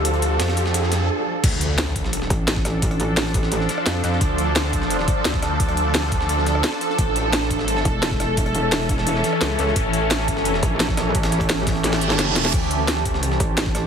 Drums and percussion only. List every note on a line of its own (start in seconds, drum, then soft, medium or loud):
0.05 closed hi-hat medium
0.14 closed hi-hat soft
0.22 closed hi-hat medium
0.40 snare loud
0.40 closed hi-hat medium
0.40 open hi-hat medium
0.48 snare medium
0.57 closed hi-hat medium
0.66 snare medium
0.74 closed hi-hat medium
0.83 snare soft
0.92 snare medium
0.92 closed hi-hat medium
1.44 kick loud
1.44 closed hi-hat loud
1.44 closed hi-hat medium
1.44 crash loud
1.61 closed hi-hat medium
1.78 snare loud
1.78 closed hi-hat loud
1.78 closed hi-hat medium
1.87 snare medium
1.96 kick medium
1.96 closed hi-hat medium
2.04 snare medium
2.13 closed hi-hat loud
2.13 closed hi-hat medium
2.22 snare medium
2.30 kick loud
2.30 closed hi-hat medium
2.48 snare loud
2.48 closed hi-hat loud
2.48 closed hi-hat medium
2.56 kick loud
2.56 snare medium
2.65 cross-stick medium
2.65 snare medium
2.65 closed hi-hat medium
2.82 kick loud
2.82 closed hi-hat loud
2.82 closed hi-hat medium
2.91 cross-stick soft
2.91 closed hi-hat soft
3.00 closed hi-hat medium
3.17 snare loud
3.17 closed hi-hat loud
3.17 open hi-hat medium
3.26 snare medium
3.34 kick loud
3.34 closed hi-hat medium
3.43 snare medium
3.52 closed hi-hat loud
3.52 closed hi-hat medium
3.60 snare soft
3.69 snare medium
3.69 closed hi-hat medium
3.78 cross-stick medium
3.86 snare loud
3.86 closed hi-hat loud
3.86 closed hi-hat medium
3.95 snare soft
4.04 snare soft
4.04 closed hi-hat medium
4.12 snare soft
4.21 kick loud
4.21 closed hi-hat loud
4.21 closed hi-hat medium
4.38 closed hi-hat medium
4.56 snare loud
4.56 closed hi-hat loud
4.56 closed hi-hat medium
4.64 snare medium
4.73 kick medium
4.73 closed hi-hat medium
4.82 snare medium
4.90 closed hi-hat medium
4.99 snare medium
5.08 kick loud
5.08 closed hi-hat medium
5.25 snare loud
5.25 closed hi-hat medium
5.34 kick loud
5.34 snare medium
5.42 cross-stick medium
5.42 snare medium
5.42 closed hi-hat medium
5.60 kick loud
5.60 closed hi-hat medium
5.68 cross-stick soft
5.68 closed hi-hat soft
5.77 closed hi-hat medium
5.94 snare loud
5.94 closed hi-hat medium
5.94 open hi-hat medium
6.03 snare medium
6.12 kick loud
6.12 closed hi-hat medium
6.21 snare medium
6.29 closed hi-hat medium
6.38 snare soft
6.46 snare medium
6.46 closed hi-hat medium
6.55 cross-stick medium
6.64 snare loud
6.64 closed hi-hat medium
6.73 snare soft
6.81 snare soft
6.81 closed hi-hat medium
6.90 snare soft
6.98 kick loud
6.98 closed hi-hat medium
7.16 closed hi-hat medium
7.33 snare loud
7.33 closed hi-hat medium
7.42 snare medium
7.51 kick medium
7.51 closed hi-hat medium
7.59 snare medium
7.68 closed hi-hat medium
7.77 snare medium
7.85 kick loud
7.85 closed hi-hat medium
8.03 snare loud
8.03 closed hi-hat medium
8.11 kick loud
8.11 snare medium
8.20 cross-stick medium
8.20 snare medium
8.20 closed hi-hat medium
8.37 kick loud
8.37 closed hi-hat medium
8.46 cross-stick soft
8.46 closed hi-hat soft
8.55 closed hi-hat medium
8.72 snare loud
8.72 closed hi-hat medium
8.72 open hi-hat medium
8.81 snare medium
8.89 kick loud
8.89 closed hi-hat medium
8.98 snare medium
9.07 closed hi-hat medium
9.15 snare soft
9.24 snare medium
9.24 closed hi-hat medium
9.33 cross-stick medium
9.41 snare loud
9.41 closed hi-hat medium
9.50 snare soft
9.59 snare soft
9.59 closed hi-hat medium
9.67 snare soft
9.76 kick loud
9.76 closed hi-hat medium
9.76 closed hi-hat loud
9.93 closed hi-hat medium
10.11 snare loud
10.11 closed hi-hat loud
10.11 closed hi-hat medium
10.19 snare medium
10.28 kick medium
10.28 closed hi-hat medium
10.37 snare medium
10.45 closed hi-hat loud
10.45 closed hi-hat medium
10.54 snare medium
10.63 kick loud
10.63 closed hi-hat medium
10.80 snare loud
10.80 closed hi-hat loud
10.80 closed hi-hat medium
10.89 kick loud
10.89 snare medium
10.97 cross-stick medium
10.97 snare loud
10.97 closed hi-hat medium
11.15 kick loud
11.15 closed hi-hat loud
11.15 closed hi-hat medium
11.23 cross-stick soft
11.23 snare loud
11.23 closed hi-hat medium
11.32 snare soft
11.32 closed hi-hat medium
11.41 kick medium
11.41 closed hi-hat medium
11.49 snare loud
11.49 closed hi-hat loud
11.49 open hi-hat medium
11.58 snare medium
11.67 kick loud
11.67 snare loud
11.67 closed hi-hat medium
11.67 open hi-hat medium
11.75 snare soft
11.84 snare medium
11.84 closed hi-hat loud
11.84 closed hi-hat medium
11.93 snare medium
11.93 snare loud
11.93 open hi-hat medium
12.01 snare medium
12.01 closed hi-hat medium
12.10 snare medium
12.10 closed hi-hat medium
12.19 snare medium
12.19 snare loud
12.19 closed hi-hat loud
12.19 closed hi-hat medium
12.28 snare soft
12.36 snare loud
12.36 closed hi-hat medium
12.45 snare medium
12.45 snare soft
12.53 kick loud
12.53 closed hi-hat loud
12.53 closed hi-hat medium
12.53 crash medium
12.71 closed hi-hat medium
12.88 snare loud
12.88 closed hi-hat loud
12.88 closed hi-hat medium
12.97 snare medium
13.05 kick medium
13.05 closed hi-hat medium
13.14 snare medium
13.23 closed hi-hat loud
13.23 closed hi-hat medium
13.32 snare medium
13.40 kick loud
13.40 closed hi-hat medium
13.57 snare loud
13.57 closed hi-hat loud
13.57 closed hi-hat medium
13.66 kick loud
13.66 snare medium
13.75 cross-stick medium
13.75 snare medium
13.75 closed hi-hat medium